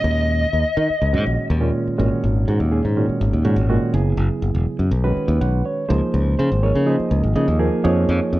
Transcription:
Already playing: A#2 D#3 G#3 C#4 F#4 D#5
0.04 D#2
0.53 D#2
0.77 D#3
0.90 muted fingered electric bass stroke
1.02 C#2
1.13 G#2 A#2 D#3 G#3 C#4 F#4
1.26 A#1
1.50 D#2
1.60 A#2 D#3 G#3 C#4 F4
1.87 muted fingered electric bass stroke
1.98 G#1 A#2 D#3 G#3 C#4 F#4
2.24 G#1
2.48 G#2 F#4
2.60 D#2
2.71 A#2 D#3 G#3 C#4 D#4 G#4
2.85 G#2
2.97 A#2 D#3 G#3 C#4 F#4
3.09 muted fingered electric bass stroke
3.21 G#1
3.33 D#2
3.45 G#2 A#2 D#3 G#3 C#4 F#4
3.56 G#1
3.70 A#2 D#3 G#3 C#4 F#4
3.94 F#1 C#3 F#3 B3 E4 G#4
4.17 F#1
4.42 F#1
4.55 E1
4.79 F#2
4.91 B1
5.04 D#3 G#3 C#4 F#4 B4
5.17 muted fingered electric bass stroke
5.28 D#2
5.41 B1 F#5
5.66 C#5
5.89 C#2 F3 A#3 D#4 G#4 C5
6.14 C#2
6.39 C#3 C5
6.52 G#1
6.62 F3 A#3 D#4 G#4 A#4 C#5
6.75 C#3
6.86 F3 A#3 D#4 G#4 C5 D#5
7.00 muted fingered electric bass stroke
7.11 C#2
7.23 G#1
7.35 C#3 F3 A#3 D#4 G#4 D#5
7.48 D#2
7.59 F3 A#3 D#4 G#4 A#4
7.84 F2 F3 A#3 D#4 G#4 C#5
8.09 F2
8.33 F2

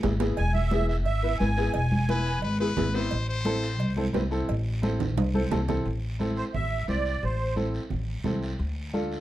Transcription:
0.03 G#1 B3 E4 G#4, high conga, low conga, low timbale, short guiro
0.20 B3 E4 G#4, low timbale, short guiro
0.37 E1 G#5, cowbell, high conga, long guiro
0.54 E5, high conga
0.71 B3 E4 G#4, high conga, short guiro
0.88 E5, short guiro
1.05 G#1 E5, cowbell, high conga, long guiro
1.23 B3 E4 B4
1.39 G#1 B3 E4 B4 G#5, high conga, short guiro
1.57 B3 E4 G#4, short guiro
1.74 E1 G#5, cowbell, high conga, long guiro
1.92 high conga
2.09 B3 E4 B4, high conga, short guiro
2.25 short guiro
2.42 G#1 B4, cowbell, high conga, long guiro
2.60 B3 E4 G#4 B4
2.77 G#1 B3 E4 G#4, high conga, low conga, low timbale, short guiro
2.94 B3 E4 B4 C5, short guiro
3.11 A1, cowbell, high conga, long guiro
3.29 C5
3.45 C4 E4 A4, high conga, short guiro
3.63 short guiro
3.80 C2, cowbell, high conga, long guiro
3.97 C4 E4 A4, high conga
4.13 C2 C4 E4 B4, high conga, low timbale, short guiro
4.31 C4 E4 A4, short guiro
4.49 A1, cowbell, high conga, long guiro
4.82 C4 E4 A4, high conga, short guiro
5.00 low conga, high timbale, short guiro
5.17 C2, cowbell, high conga, high timbale, long guiro
5.34 C4 E4 A4 C5, high conga
5.51 C2 C4 E4 A4 A5, low conga, low timbale, short guiro
5.68 C4 E4 A4, low conga, low timbale, short guiro
5.86 A1, high conga, long guiro
6.19 C4 E4 A4, high conga, short guiro
6.37 C5, short guiro
6.54 A1 E5, high conga, low conga, long guiro
6.88 C2 C4 E4 C5 D5, high conga, short guiro
7.05 short guiro
7.23 A1 C5, high conga, long guiro
7.56 C4 E4 A4, high conga, short guiro
7.74 short guiro
7.90 A1, high conga, low conga, long guiro
8.24 C2 C4 E4 A4, high conga, low conga, short guiro
8.43 short guiro
8.59 D2, high conga, long guiro
8.93 D4 F4 A4, high conga, short guiro
9.12 short guiro

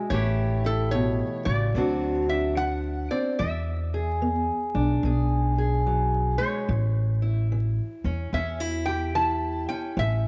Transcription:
Already playing: G#3 E5
0.10 A1 A2 E3 A3 E4 G4 C#5
0.64 E4 A4
0.91 B2 C#5
1.45 A1 C#3 D5
1.74 D2 D3 F#3 C4 D4 F#4
2.04 C#5
2.29 D4 E5
2.56 F#3 F#5
3.11 C4 D5
3.39 E2 E3 E5
3.94 G#4
4.22 B3
4.75 B1 D4
5.03 B1 B2 G#4
5.58 G#4
5.86 F#3
6.38 G#3 C#5
6.69 A1 A2
7.22 E4
7.52 E3
8.04 E2 C#4
8.33 E2 A2 C#4 E5
8.60 E4
8.86 G4 G5
9.15 E3 E4 A5
9.69 C#4 G5
9.97 A1 A2 E5

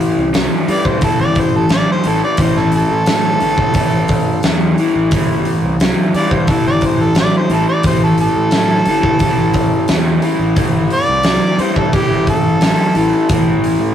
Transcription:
Already playing: A2 E3
0.01 open hi-hat
0.17 C2
0.34 A2 F#3, snare, open hi-hat
0.68 G2 A2 E3 D5, open hi-hat
0.85 C5, kick
1.01 A2 E3 A4, kick, open hi-hat
1.20 G1 D5
1.35 kick, open hi-hat
1.39 C5
1.54 A1 A4
1.69 A2 F#3 D5, snare, open hi-hat
1.92 C5
2.04 A1 A2 E3, open hi-hat
2.08 A4
2.24 D5
2.37 A1 A2 E3 C5, kick, open hi-hat
2.56 A4, snare
2.72 A4, open hi-hat
2.91 A2
3.06 A2 F#3, snare, open hi-hat
3.40 G1 A2 E3, open hi-hat
3.58 kick
3.74 A2 E3, kick, open hi-hat
3.94 A1
4.08 kick, open hi-hat
4.43 E2 A2 F#3, snare, open hi-hat
4.78 A2 E3, open hi-hat
4.96 A1
5.11 G1 A2 E3, kick, open hi-hat
5.45 open hi-hat
5.63 C2
5.80 A2 F#3, snare, open hi-hat
6.14 G2 A2 D5, open hi-hat
6.18 E3
6.31 C5, kick
6.47 A2 E3 A4, kick, open hi-hat
6.64 G1 D5
6.81 C5, kick, open hi-hat
6.98 A1
7.02 A4
7.15 A2 F#3, snare, open hi-hat
7.19 D5
7.37 C5
7.50 A1 A2 E3 A4, open hi-hat
7.69 D5
7.83 A1 A2 E3 C5, kick, open hi-hat
8.04 A4
8.18 A4, open hi-hat
8.36 A2
8.51 A2, snare, open hi-hat
8.55 F#3
8.86 G1 A2 E3, open hi-hat
9.03 kick
9.19 A2 E3, kick, open hi-hat
9.37 A1
9.54 kick, open hi-hat
9.88 E2 A2 F#3, snare, open hi-hat
10.22 A2 E3, open hi-hat
10.39 A1
10.56 G1 A2 E3, kick, open hi-hat
10.90 D5, open hi-hat
11.08 C2
11.23 A2 F#3, snare, open hi-hat
11.58 G2 A2 E3 C5, open hi-hat
11.76 A4, kick
11.93 A2 E3 G4, kick, open hi-hat
12.11 G1
12.27 A4, kick, open hi-hat
12.45 A1
12.61 A2 F#3, snare, open hi-hat
12.95 A1 A2 E3, open hi-hat
13.29 A1 A2 E3, kick, open hi-hat
13.64 open hi-hat
13.80 A2

